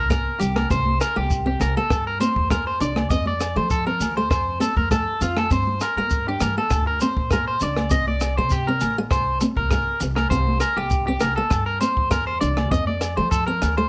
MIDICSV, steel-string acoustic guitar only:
0, 0, Header, 1, 2, 480
1, 0, Start_track
1, 0, Tempo, 600601
1, 566, Time_signature, 4, 2, 24, 8
1, 11099, End_track
2, 0, Start_track
2, 0, Title_t, "Steel-string acoustic guitar"
2, 0, Program_c, 0, 25
2, 84, Note_on_c, 0, 58, 75
2, 227, Note_off_c, 0, 58, 0
2, 315, Note_on_c, 0, 55, 73
2, 460, Note_off_c, 0, 55, 0
2, 568, Note_on_c, 0, 60, 82
2, 709, Note_off_c, 0, 60, 0
2, 928, Note_on_c, 0, 58, 68
2, 1071, Note_off_c, 0, 58, 0
2, 1165, Note_on_c, 0, 60, 67
2, 1309, Note_off_c, 0, 60, 0
2, 1415, Note_on_c, 0, 58, 68
2, 1556, Note_off_c, 0, 58, 0
2, 1767, Note_on_c, 0, 60, 69
2, 1909, Note_off_c, 0, 60, 0
2, 2010, Note_on_c, 0, 58, 83
2, 2151, Note_off_c, 0, 58, 0
2, 2248, Note_on_c, 0, 62, 70
2, 2390, Note_off_c, 0, 62, 0
2, 2487, Note_on_c, 0, 60, 86
2, 2629, Note_off_c, 0, 60, 0
2, 2848, Note_on_c, 0, 57, 66
2, 2992, Note_off_c, 0, 57, 0
2, 3089, Note_on_c, 0, 60, 63
2, 3232, Note_off_c, 0, 60, 0
2, 3335, Note_on_c, 0, 57, 69
2, 3476, Note_off_c, 0, 57, 0
2, 3678, Note_on_c, 0, 60, 73
2, 3822, Note_off_c, 0, 60, 0
2, 3927, Note_on_c, 0, 57, 71
2, 4069, Note_off_c, 0, 57, 0
2, 4173, Note_on_c, 0, 60, 75
2, 4313, Note_off_c, 0, 60, 0
2, 4406, Note_on_c, 0, 60, 83
2, 4548, Note_off_c, 0, 60, 0
2, 4779, Note_on_c, 0, 58, 65
2, 4919, Note_off_c, 0, 58, 0
2, 5023, Note_on_c, 0, 62, 62
2, 5162, Note_off_c, 0, 62, 0
2, 5255, Note_on_c, 0, 58, 65
2, 5396, Note_off_c, 0, 58, 0
2, 5613, Note_on_c, 0, 60, 75
2, 5753, Note_off_c, 0, 60, 0
2, 5859, Note_on_c, 0, 58, 79
2, 5998, Note_off_c, 0, 58, 0
2, 6090, Note_on_c, 0, 62, 73
2, 6231, Note_off_c, 0, 62, 0
2, 6321, Note_on_c, 0, 60, 84
2, 6465, Note_off_c, 0, 60, 0
2, 6700, Note_on_c, 0, 58, 64
2, 6840, Note_off_c, 0, 58, 0
2, 6940, Note_on_c, 0, 60, 63
2, 7080, Note_off_c, 0, 60, 0
2, 7179, Note_on_c, 0, 58, 75
2, 7319, Note_off_c, 0, 58, 0
2, 7528, Note_on_c, 0, 60, 71
2, 7670, Note_off_c, 0, 60, 0
2, 7772, Note_on_c, 0, 58, 75
2, 7912, Note_off_c, 0, 58, 0
2, 8013, Note_on_c, 0, 60, 74
2, 8153, Note_off_c, 0, 60, 0
2, 8245, Note_on_c, 0, 60, 83
2, 8387, Note_off_c, 0, 60, 0
2, 8611, Note_on_c, 0, 58, 69
2, 8753, Note_off_c, 0, 58, 0
2, 8856, Note_on_c, 0, 60, 66
2, 8997, Note_off_c, 0, 60, 0
2, 9091, Note_on_c, 0, 58, 74
2, 9233, Note_off_c, 0, 58, 0
2, 9442, Note_on_c, 0, 60, 71
2, 9585, Note_off_c, 0, 60, 0
2, 9675, Note_on_c, 0, 58, 81
2, 9821, Note_off_c, 0, 58, 0
2, 9918, Note_on_c, 0, 62, 70
2, 10063, Note_off_c, 0, 62, 0
2, 10163, Note_on_c, 0, 60, 89
2, 10306, Note_off_c, 0, 60, 0
2, 10528, Note_on_c, 0, 57, 61
2, 10671, Note_off_c, 0, 57, 0
2, 10769, Note_on_c, 0, 60, 68
2, 10912, Note_off_c, 0, 60, 0
2, 11011, Note_on_c, 0, 57, 70
2, 11099, Note_off_c, 0, 57, 0
2, 11099, End_track
0, 0, End_of_file